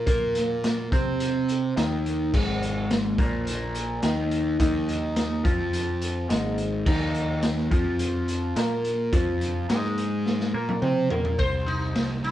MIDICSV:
0, 0, Header, 1, 5, 480
1, 0, Start_track
1, 0, Tempo, 566038
1, 60, Time_signature, 4, 2, 24, 8
1, 10441, End_track
2, 0, Start_track
2, 0, Title_t, "Sitar"
2, 0, Program_c, 0, 104
2, 9654, Note_on_c, 0, 72, 102
2, 9891, Note_on_c, 0, 63, 83
2, 9906, Note_off_c, 0, 72, 0
2, 10374, Note_off_c, 0, 63, 0
2, 10377, Note_on_c, 0, 65, 85
2, 10441, Note_off_c, 0, 65, 0
2, 10441, End_track
3, 0, Start_track
3, 0, Title_t, "Clean electric guitar"
3, 0, Program_c, 1, 27
3, 55, Note_on_c, 1, 58, 89
3, 58, Note_on_c, 1, 70, 103
3, 770, Note_off_c, 1, 58, 0
3, 772, Note_off_c, 1, 70, 0
3, 782, Note_on_c, 1, 60, 94
3, 788, Note_on_c, 1, 72, 104
3, 1494, Note_off_c, 1, 60, 0
3, 1495, Note_on_c, 1, 51, 97
3, 1497, Note_off_c, 1, 72, 0
3, 1498, Note_on_c, 1, 63, 111
3, 1971, Note_off_c, 1, 51, 0
3, 1972, Note_off_c, 1, 63, 0
3, 1980, Note_on_c, 1, 44, 88
3, 1987, Note_on_c, 1, 56, 102
3, 2694, Note_off_c, 1, 44, 0
3, 2697, Note_off_c, 1, 56, 0
3, 2699, Note_on_c, 1, 46, 87
3, 2701, Note_on_c, 1, 58, 101
3, 3413, Note_off_c, 1, 46, 0
3, 3415, Note_off_c, 1, 58, 0
3, 3422, Note_on_c, 1, 51, 92
3, 3424, Note_on_c, 1, 63, 100
3, 3889, Note_off_c, 1, 51, 0
3, 3892, Note_off_c, 1, 63, 0
3, 3899, Note_on_c, 1, 51, 92
3, 3902, Note_on_c, 1, 63, 89
3, 4611, Note_off_c, 1, 51, 0
3, 4614, Note_on_c, 1, 53, 87
3, 4615, Note_off_c, 1, 63, 0
3, 4619, Note_on_c, 1, 65, 94
3, 5330, Note_on_c, 1, 44, 98
3, 5331, Note_off_c, 1, 53, 0
3, 5334, Note_off_c, 1, 65, 0
3, 5337, Note_on_c, 1, 56, 100
3, 5809, Note_off_c, 1, 44, 0
3, 5812, Note_off_c, 1, 56, 0
3, 5816, Note_on_c, 1, 51, 93
3, 5823, Note_on_c, 1, 63, 102
3, 6532, Note_off_c, 1, 51, 0
3, 6535, Note_off_c, 1, 63, 0
3, 6536, Note_on_c, 1, 53, 95
3, 6544, Note_on_c, 1, 65, 101
3, 7252, Note_off_c, 1, 53, 0
3, 7256, Note_off_c, 1, 65, 0
3, 7259, Note_on_c, 1, 58, 93
3, 7266, Note_on_c, 1, 70, 109
3, 7733, Note_off_c, 1, 58, 0
3, 7737, Note_off_c, 1, 70, 0
3, 7737, Note_on_c, 1, 53, 95
3, 7742, Note_on_c, 1, 65, 104
3, 8211, Note_on_c, 1, 56, 87
3, 8212, Note_off_c, 1, 53, 0
3, 8215, Note_off_c, 1, 65, 0
3, 8219, Note_on_c, 1, 68, 94
3, 8930, Note_off_c, 1, 56, 0
3, 8934, Note_off_c, 1, 68, 0
3, 8940, Note_on_c, 1, 58, 83
3, 8942, Note_on_c, 1, 70, 98
3, 9169, Note_off_c, 1, 58, 0
3, 9170, Note_off_c, 1, 70, 0
3, 9172, Note_on_c, 1, 60, 80
3, 9174, Note_on_c, 1, 72, 94
3, 9410, Note_off_c, 1, 60, 0
3, 9411, Note_off_c, 1, 72, 0
3, 9414, Note_on_c, 1, 58, 91
3, 9422, Note_on_c, 1, 70, 98
3, 9652, Note_off_c, 1, 58, 0
3, 9655, Note_off_c, 1, 70, 0
3, 10441, End_track
4, 0, Start_track
4, 0, Title_t, "Picked electric bass"
4, 0, Program_c, 2, 34
4, 59, Note_on_c, 2, 46, 94
4, 746, Note_off_c, 2, 46, 0
4, 780, Note_on_c, 2, 48, 88
4, 1467, Note_off_c, 2, 48, 0
4, 1504, Note_on_c, 2, 39, 88
4, 1949, Note_off_c, 2, 39, 0
4, 1981, Note_on_c, 2, 32, 88
4, 2668, Note_off_c, 2, 32, 0
4, 2699, Note_on_c, 2, 34, 89
4, 3387, Note_off_c, 2, 34, 0
4, 3426, Note_on_c, 2, 39, 89
4, 3871, Note_off_c, 2, 39, 0
4, 3901, Note_on_c, 2, 39, 94
4, 4588, Note_off_c, 2, 39, 0
4, 4624, Note_on_c, 2, 41, 89
4, 5310, Note_off_c, 2, 41, 0
4, 5345, Note_on_c, 2, 32, 88
4, 5791, Note_off_c, 2, 32, 0
4, 5820, Note_on_c, 2, 39, 88
4, 6507, Note_off_c, 2, 39, 0
4, 6545, Note_on_c, 2, 41, 94
4, 7229, Note_off_c, 2, 41, 0
4, 7260, Note_on_c, 2, 46, 87
4, 7707, Note_off_c, 2, 46, 0
4, 7742, Note_on_c, 2, 41, 93
4, 8189, Note_off_c, 2, 41, 0
4, 8226, Note_on_c, 2, 44, 99
4, 8910, Note_off_c, 2, 44, 0
4, 8938, Note_on_c, 2, 46, 93
4, 9163, Note_off_c, 2, 46, 0
4, 9178, Note_on_c, 2, 48, 90
4, 9404, Note_off_c, 2, 48, 0
4, 9418, Note_on_c, 2, 46, 85
4, 9644, Note_off_c, 2, 46, 0
4, 9662, Note_on_c, 2, 36, 83
4, 9894, Note_off_c, 2, 36, 0
4, 9903, Note_on_c, 2, 36, 85
4, 10134, Note_off_c, 2, 36, 0
4, 10144, Note_on_c, 2, 36, 80
4, 10375, Note_off_c, 2, 36, 0
4, 10381, Note_on_c, 2, 36, 75
4, 10441, Note_off_c, 2, 36, 0
4, 10441, End_track
5, 0, Start_track
5, 0, Title_t, "Drums"
5, 57, Note_on_c, 9, 42, 98
5, 59, Note_on_c, 9, 36, 95
5, 142, Note_off_c, 9, 42, 0
5, 144, Note_off_c, 9, 36, 0
5, 298, Note_on_c, 9, 42, 73
5, 300, Note_on_c, 9, 38, 34
5, 382, Note_off_c, 9, 42, 0
5, 385, Note_off_c, 9, 38, 0
5, 542, Note_on_c, 9, 42, 90
5, 544, Note_on_c, 9, 38, 104
5, 627, Note_off_c, 9, 42, 0
5, 629, Note_off_c, 9, 38, 0
5, 781, Note_on_c, 9, 36, 103
5, 785, Note_on_c, 9, 42, 71
5, 866, Note_off_c, 9, 36, 0
5, 870, Note_off_c, 9, 42, 0
5, 1020, Note_on_c, 9, 42, 95
5, 1105, Note_off_c, 9, 42, 0
5, 1259, Note_on_c, 9, 42, 66
5, 1344, Note_off_c, 9, 42, 0
5, 1502, Note_on_c, 9, 42, 87
5, 1505, Note_on_c, 9, 38, 113
5, 1587, Note_off_c, 9, 42, 0
5, 1589, Note_off_c, 9, 38, 0
5, 1748, Note_on_c, 9, 42, 65
5, 1833, Note_off_c, 9, 42, 0
5, 1982, Note_on_c, 9, 36, 100
5, 1984, Note_on_c, 9, 49, 93
5, 2067, Note_off_c, 9, 36, 0
5, 2069, Note_off_c, 9, 49, 0
5, 2227, Note_on_c, 9, 42, 69
5, 2312, Note_off_c, 9, 42, 0
5, 2464, Note_on_c, 9, 42, 87
5, 2466, Note_on_c, 9, 38, 116
5, 2549, Note_off_c, 9, 42, 0
5, 2551, Note_off_c, 9, 38, 0
5, 2700, Note_on_c, 9, 36, 109
5, 2703, Note_on_c, 9, 42, 73
5, 2785, Note_off_c, 9, 36, 0
5, 2787, Note_off_c, 9, 42, 0
5, 2942, Note_on_c, 9, 42, 93
5, 3027, Note_off_c, 9, 42, 0
5, 3178, Note_on_c, 9, 42, 66
5, 3263, Note_off_c, 9, 42, 0
5, 3414, Note_on_c, 9, 42, 96
5, 3417, Note_on_c, 9, 38, 108
5, 3499, Note_off_c, 9, 42, 0
5, 3502, Note_off_c, 9, 38, 0
5, 3658, Note_on_c, 9, 42, 78
5, 3743, Note_off_c, 9, 42, 0
5, 3899, Note_on_c, 9, 36, 103
5, 3899, Note_on_c, 9, 42, 100
5, 3984, Note_off_c, 9, 36, 0
5, 3984, Note_off_c, 9, 42, 0
5, 4143, Note_on_c, 9, 42, 73
5, 4228, Note_off_c, 9, 42, 0
5, 4378, Note_on_c, 9, 42, 100
5, 4381, Note_on_c, 9, 38, 112
5, 4463, Note_off_c, 9, 42, 0
5, 4466, Note_off_c, 9, 38, 0
5, 4621, Note_on_c, 9, 36, 108
5, 4623, Note_on_c, 9, 42, 78
5, 4706, Note_off_c, 9, 36, 0
5, 4707, Note_off_c, 9, 42, 0
5, 4862, Note_on_c, 9, 42, 90
5, 4947, Note_off_c, 9, 42, 0
5, 5101, Note_on_c, 9, 42, 70
5, 5186, Note_off_c, 9, 42, 0
5, 5343, Note_on_c, 9, 42, 93
5, 5346, Note_on_c, 9, 38, 104
5, 5428, Note_off_c, 9, 42, 0
5, 5430, Note_off_c, 9, 38, 0
5, 5578, Note_on_c, 9, 42, 69
5, 5663, Note_off_c, 9, 42, 0
5, 5819, Note_on_c, 9, 49, 93
5, 5820, Note_on_c, 9, 36, 100
5, 5903, Note_off_c, 9, 49, 0
5, 5905, Note_off_c, 9, 36, 0
5, 6058, Note_on_c, 9, 42, 62
5, 6143, Note_off_c, 9, 42, 0
5, 6296, Note_on_c, 9, 42, 90
5, 6299, Note_on_c, 9, 38, 111
5, 6381, Note_off_c, 9, 42, 0
5, 6383, Note_off_c, 9, 38, 0
5, 6425, Note_on_c, 9, 38, 33
5, 6510, Note_off_c, 9, 38, 0
5, 6541, Note_on_c, 9, 36, 110
5, 6543, Note_on_c, 9, 42, 70
5, 6626, Note_off_c, 9, 36, 0
5, 6627, Note_off_c, 9, 42, 0
5, 6778, Note_on_c, 9, 42, 90
5, 6863, Note_off_c, 9, 42, 0
5, 7022, Note_on_c, 9, 42, 69
5, 7107, Note_off_c, 9, 42, 0
5, 7262, Note_on_c, 9, 42, 95
5, 7264, Note_on_c, 9, 38, 104
5, 7347, Note_off_c, 9, 42, 0
5, 7349, Note_off_c, 9, 38, 0
5, 7502, Note_on_c, 9, 42, 74
5, 7587, Note_off_c, 9, 42, 0
5, 7740, Note_on_c, 9, 36, 104
5, 7741, Note_on_c, 9, 42, 98
5, 7825, Note_off_c, 9, 36, 0
5, 7826, Note_off_c, 9, 42, 0
5, 7981, Note_on_c, 9, 42, 75
5, 8066, Note_off_c, 9, 42, 0
5, 8222, Note_on_c, 9, 42, 98
5, 8224, Note_on_c, 9, 38, 109
5, 8306, Note_off_c, 9, 42, 0
5, 8309, Note_off_c, 9, 38, 0
5, 8347, Note_on_c, 9, 38, 35
5, 8432, Note_off_c, 9, 38, 0
5, 8461, Note_on_c, 9, 42, 82
5, 8545, Note_off_c, 9, 42, 0
5, 8702, Note_on_c, 9, 38, 57
5, 8787, Note_off_c, 9, 38, 0
5, 8822, Note_on_c, 9, 38, 60
5, 8907, Note_off_c, 9, 38, 0
5, 9063, Note_on_c, 9, 48, 76
5, 9148, Note_off_c, 9, 48, 0
5, 9177, Note_on_c, 9, 47, 79
5, 9261, Note_off_c, 9, 47, 0
5, 9417, Note_on_c, 9, 43, 96
5, 9501, Note_off_c, 9, 43, 0
5, 9538, Note_on_c, 9, 43, 83
5, 9623, Note_off_c, 9, 43, 0
5, 9658, Note_on_c, 9, 36, 100
5, 9658, Note_on_c, 9, 51, 76
5, 9743, Note_off_c, 9, 36, 0
5, 9743, Note_off_c, 9, 51, 0
5, 9903, Note_on_c, 9, 51, 52
5, 9988, Note_off_c, 9, 51, 0
5, 10138, Note_on_c, 9, 51, 74
5, 10140, Note_on_c, 9, 38, 101
5, 10222, Note_off_c, 9, 51, 0
5, 10225, Note_off_c, 9, 38, 0
5, 10382, Note_on_c, 9, 51, 53
5, 10441, Note_off_c, 9, 51, 0
5, 10441, End_track
0, 0, End_of_file